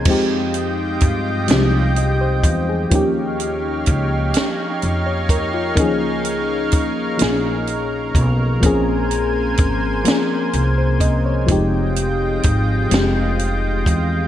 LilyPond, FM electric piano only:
\new Staff \with { instrumentName = "FM electric piano" } { \time 6/8 \key f \minor \tempo 4. = 42 << { aes'16 r4. r16 ees''16 c''8 aes'16~ | aes'16 r2 des''16 bes'16 f'16~ | f'16 r2 r8. | r2 r16 c''16 ees''16 des''16~ |
des''16 r2 r8. | } \\ { <f aes c' ees' g'>4. <f g aes c' ees' g'>4. | <f bes des' ees' g'>4. r4. | <ees f bes des' ees' aes'>4. <f bes des' ees' aes'>4. | <f bes c' des' aes'>4. <f bes c' des' aes'>4. |
<f aes c' ees' g'>4. <f aes c' ees' g'>4. | } >> }